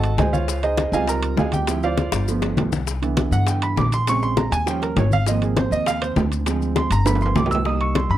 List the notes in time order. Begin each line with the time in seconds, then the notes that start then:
Already playing: G#1 A4 D#5 F#5 A5
0.03 high bongo, high conga, high timbale, maracas
0.17 C#2 G#4 C5 D#5 G#5, high bongo, low bongo, high conga, high timbale, low timbale, maracas
0.33 F4 C5 C#5 F5, high bongo, high conga, maracas
0.48 high bongo, high conga, maracas
0.63 D#4 G#4 C5 D#5, high conga, high timbale, maracas
0.77 high bongo, high conga, high timbale, low timbale, maracas
0.92 C#2 G3 C4 D#4 F4 G#4 D#5 F5 G#5, high conga, maracas
1.08 A#4 A#5, high bongo, high conga, high timbale, maracas
1.23 high conga, high timbale, maracas
1.37 D2 G#4 D#5 F5 G#5, high bongo, low bongo, high conga, low timbale, maracas
1.52 G4 G5, high conga, high timbale, maracas
1.67 F3 C4 E4, high bongo, high timbale, maracas
1.83 F4 C5 D5 F5, high conga, maracas
1.97 high bongo, high conga, high timbale, low timbale, maracas
2.12 G1, high bongo, high conga, high timbale, maracas
2.27 F3 A3 B3, high conga, maracas
2.42 high bongo, high conga, high timbale, maracas
2.57 C2, low bongo, high conga, high timbale, low timbale, maracas
2.72 low bongo, high conga, maracas
2.87 high bongo, high conga, maracas
3.02 D3 E3 B3, high conga, high timbale, maracas
3.17 high bongo, high conga, high timbale, low timbale, maracas
3.31 G2 F#5, high conga, maracas
3.47 G5, high bongo, high conga, high timbale, maracas
3.62 B5, high conga, high timbale, maracas
3.76 A#1 D6, high bongo, low bongo, high conga, low timbale, maracas
3.92 C6, high timbale, maracas
4.07 C#3 G#3 C4 C#6, high bongo, high conga, high timbale, maracas
4.22 C6, high conga, maracas
4.37 A#5, high bongo, high conga, high timbale, low timbale, maracas
4.51 D#2 G#5, high bongo, high conga, high timbale, maracas
4.66 F3 G3 C#4 G5, high bongo, high conga, maracas
4.82 A#4, high bongo, high conga, high timbale, maracas
4.96 G#1 C#5, high bongo, low bongo, high conga, high timbale, low timbale, maracas
5.11 F5, high bongo, high conga, maracas
5.26 F3 A#3 C4 D#5, high bongo, high conga, maracas
5.41 G#4, high conga, high timbale, maracas
5.57 C5, high bongo, high conga, high timbale, low timbale, maracas
5.71 D#2 D#5, high conga, maracas
5.86 F5, high bongo, high conga, high timbale, maracas
6.02 C5, high conga, high timbale, maracas
6.16 D2, high bongo, low bongo, high conga, low timbale, maracas
6.32 high timbale, maracas
6.46 F3 G#3 C4, high bongo, high conga, high timbale, maracas
6.61 high conga, maracas
6.76 C6, high bongo, high conga, high timbale, low timbale, maracas
6.90 G1 A#5, high bongo, high conga, high timbale, maracas
7.06 F3 A3 B3 B5, high bongo, high conga, high timbale, maracas
7.15 high timbale
7.21 C6, high bongo, high conga, maracas
7.26 high timbale
7.35 C2 D6, high bongo, low bongo, high conga, low timbale, maracas
7.46 low timbale
7.51 E6, high bongo, high conga, maracas
7.55 low timbale
7.65 G3 A#3 D#4 D#6, high bongo, high conga
7.80 C#6, high conga, high timbale
7.95 C6, high bongo, high conga, high timbale, low timbale
8.10 G2 B5, high conga